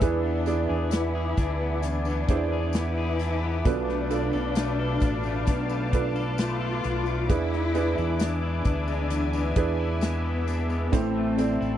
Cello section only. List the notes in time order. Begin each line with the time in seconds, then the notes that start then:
0.02 D4
0.91 E4
1.83 D4
2.75 E4
3.66 D4
6.38 F4
7.30 E4
8.20 D4
10.02 B3
10.94 C4